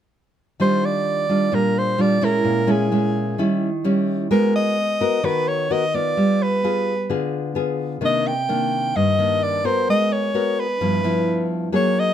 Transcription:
0.60 D#3 G3 D4 F4 C5
0.85 D5
1.29 G3 D4 F4
1.52 A#2 G3 D4 F4 A#4
1.78 C5
1.98 G3 D4 F4 D5
2.21 G#3 C#4 E4 A#4
2.44 A#2
2.67 G#3 C#4 E4 G#4
2.92 G#3 C#4 E4
3.38 D#3 G3 C#4 E4
3.84 G3 C#4 E4
4.31 G#3 B3 F#4 A#4
4.56 D#5
5.00 B3 F#4 A#4
5.23 D#3 B3 F#4 A#4 B4
5.48 C#5
5.70 B3 F#4 A#4 D#5
5.94 B3 F4 D5
6.17 G3
6.43 B4
6.63 B3 F4 G#4
7.09 D3 B3 F4 G#4
7.55 B3 F4 G#4
8.01 C3 D#3 A#3 D4 D#5
8.27 G5
8.49 D#3 A#3 D4
8.96 G2 D#5
9.18 D#3 A#3 D4
9.43 D5
9.64 B3 F#4 A#4 C5
9.89 G#3 D#5
10.12 C#5
10.34 B3 F#4 A#4
10.60 B4
10.81 G2 F3 B3 E4
11.04 F3 B3 E4
11.72 F#3 A#3 D#4 G#4 C#5
11.99 D#5

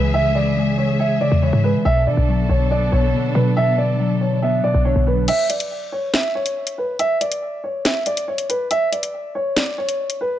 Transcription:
Already playing: C#2 C#3 E3 G#3 G#4 C#5 E5
0.14 C#3 E5
0.35 E3 D5
0.57 G#3
0.78 C#5
0.99 C#5 E5
1.21 C#3 D5
1.32 E2
1.42 E3 C#5
1.53 G#2
1.64 G#3 B4
1.74 C#3
1.85 B1 B2 B3 D4 A4 E5
2.07 D3 F#3 D5
2.17 B1
2.28 F#3
2.49 B1 C#5
2.71 B3 D5
2.92 B1 B2 C#5
3.14 D3
3.35 B2 F#3 B4
3.56 B2 E5
3.78 D3 D5
4.00 F#3
4.21 C#5
4.42 B3 E5
4.63 B2 D5
4.74 B1
4.85 D3 C#5
4.96 B1
5.06 F#3 B4
5.28 E5, closed hi-hat, crash
5.49 D5, closed hi-hat
5.60 closed hi-hat
5.92 C#5
6.14 E5, snare, closed hi-hat
6.35 C#5
6.46 closed hi-hat
6.67 closed hi-hat
6.78 B4
6.99 E5, closed hi-hat
7.21 D5, closed hi-hat
7.32 closed hi-hat
7.64 C#5
7.85 E5, snare, closed hi-hat
8.06 D5, closed hi-hat
8.17 closed hi-hat
8.28 C#5
8.38 closed hi-hat
8.49 B4, closed hi-hat
8.71 E5, closed hi-hat
8.92 D5, closed hi-hat
9.03 closed hi-hat
9.35 C#5
9.56 D5, snare, closed hi-hat
9.78 C#5
9.89 closed hi-hat
10.10 closed hi-hat
10.21 B4

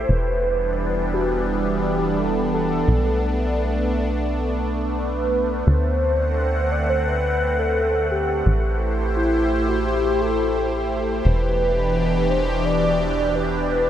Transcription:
0.09 E1 E3 G3 B3 D4 B4
1.14 F#4
1.49 G4
2.19 A4
2.54 A4
2.88 B1 A3
4.98 B4
5.67 D2 D3 C4 C5 F#5
6.72 D5
6.89 C5
7.07 B4
7.59 A4
8.11 G4
8.46 A1 E4 G4 C5
9.16 E4
9.68 F#4
9.86 G4
10.21 A4
11.25 E1 B2 E3 D4 G4 B4
12.31 C5
12.65 D5
13.35 B4

